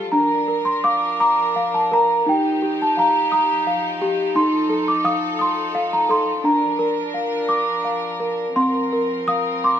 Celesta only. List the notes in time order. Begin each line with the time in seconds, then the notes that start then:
Already playing: G4 F5 A5
0.12 D4 A#5
0.48 A#4
0.65 C6
0.84 F5 D6
1.20 A#5 D6
1.56 F5
1.74 A5
1.92 A#4 A#5
2.26 D#4 G5
2.62 G4
2.82 A5
2.97 F5 A#5
3.32 A#5 D#6
3.67 F5
4.02 G4
4.35 D#4 C6
4.70 A4
4.88 D6
5.04 F5 D#6
5.39 C6 D#6
5.75 F5
5.93 A#5
6.09 A4 C6
6.44 D4 A#5
6.79 A#4
7.14 F5
7.49 D6
7.85 F5
8.20 A#4
8.56 C4 C6
8.93 A#4
9.28 F5 D#6
9.64 C6 D6